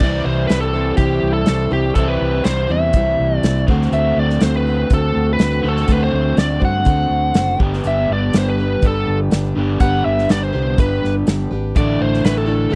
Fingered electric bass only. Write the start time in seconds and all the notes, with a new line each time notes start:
0.00 C2
0.25 C2
0.50 C2
0.98 C2
1.23 C2
1.49 C2
1.71 C2
1.95 C2
2.21 C2
2.45 C2
2.69 E2
2.94 C2
3.20 C2
3.43 C2
3.68 D2
3.92 D2
4.17 D2
4.42 D2
4.90 D2
5.16 D2
5.40 D2
5.64 D2
5.88 D2
6.13 D2
6.37 D2
6.61 G2
6.86 D2
7.10 D2
7.35 F#1
7.60 G1
7.85 G1
8.10 G1
8.34 G1
8.83 G1
9.08 G1
9.33 G1
9.56 G1
9.80 G1
10.06 G1
10.31 G1
10.54 C2
10.78 G1
11.05 G1
11.27 G1
11.51 G#1
11.76 A1
12.01 A1
12.24 A1